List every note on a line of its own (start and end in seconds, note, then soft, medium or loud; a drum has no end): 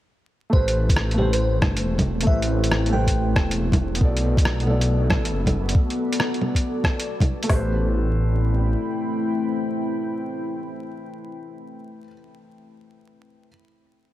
0.50 1.61 A1 medium
0.50 1.13 A3 medium
0.50 4.01 A3 medium
0.50 1.15 G4 medium
0.50 0.76 C5 medium
0.50 kick loud
0.55 1.18 B4 medium
0.55 1.19 C5 medium
0.64 5.43 E4 medium
0.68 4.01 C4 medium
0.68 closed hi-hat soft
0.89 4.02 G5 medium
0.89 kick loud
0.89 closed hi-hat medium
0.96 cross-stick loud
1.11 2.22 A3 medium
1.11 closed hi-hat soft
1.17 2.24 G4 medium
1.17 1.30 G4 medium
1.17 2.26 B4 medium
1.17 low bongo soft
1.22 2.27 C5 medium
1.33 1.56 C5 medium
1.33 closed hi-hat medium
1.62 1.82 G1 medium
1.62 kick loud
1.62 cross-stick loud
1.62 low bongo medium
1.77 closed hi-hat medium
1.83 2.26 E1 loud
1.98 kick medium
1.98 closed hi-hat soft
1.98 low bongo medium
2.21 2.87 A3 medium
2.21 closed hi-hat medium
2.26 3.35 A1 medium
2.26 2.89 G4 medium
2.26 2.91 B4 medium
2.26 2.71 E5 medium
2.26 kick loud
2.31 2.93 C5 medium
2.42 closed hi-hat soft
2.64 closed hi-hat medium
2.72 cross-stick loud
2.86 3.97 A3 medium
2.86 closed hi-hat soft
2.91 3.99 G4 medium
2.91 4.00 B4 medium
2.91 3.29 G5 medium
2.91 low bongo soft
2.96 4.01 C5 medium
3.07 kick medium
3.07 closed hi-hat medium
3.36 4.00 E1 medium
3.36 kick loud
3.36 cross-stick loud
3.51 closed hi-hat medium
3.72 kick loud
3.72 closed hi-hat soft
3.72 low bongo medium
3.95 4.61 B3 medium
3.95 closed hi-hat medium
4.00 5.09 B1 loud
4.00 5.76 A3 medium
4.00 7.50 B3 medium
4.00 5.76 A4 medium
4.00 4.65 A4 medium
4.00 kick loud
4.05 4.67 D5 medium
4.11 7.49 D5 medium
4.16 7.49 F#4 medium
4.16 closed hi-hat soft
4.20 7.49 A4 medium
4.37 kick loud
4.37 closed hi-hat medium
4.45 7.50 B5 medium
4.45 cross-stick loud
4.60 5.71 B3 medium
4.60 closed hi-hat soft
4.66 5.73 A4 medium
4.66 5.75 D5 medium
4.66 low bongo soft
4.81 closed hi-hat medium
5.10 5.31 A1 medium
5.10 kick loud
5.10 cross-stick loud
5.10 low bongo medium
5.25 closed hi-hat medium
5.32 5.74 F#1 loud
5.46 kick medium
5.46 closed hi-hat soft
5.46 low bongo medium
5.69 closed hi-hat medium
5.75 kick loud
5.90 closed hi-hat soft
6.13 closed hi-hat medium
6.20 cross-stick loud
6.34 closed hi-hat soft
6.41 low bongo soft
6.55 kick medium
6.55 closed hi-hat medium
6.84 kick loud
6.84 cross-stick loud
7.00 closed hi-hat medium
7.20 kick loud
7.20 closed hi-hat soft
7.20 low bongo medium
7.43 11.99 A3 medium
7.43 closed hi-hat medium
7.47 8.76 A1 medium
7.47 11.74 A3 medium
7.47 12.03 G4 medium
7.47 12.07 B4 medium
7.47 kick loud
7.47 snare loud
7.47 open hi-hat medium
7.55 12.11 C5 medium
7.60 11.74 E4 medium
7.67 11.74 C4 medium
7.67 11.74 B5 medium
7.78 11.74 G5 medium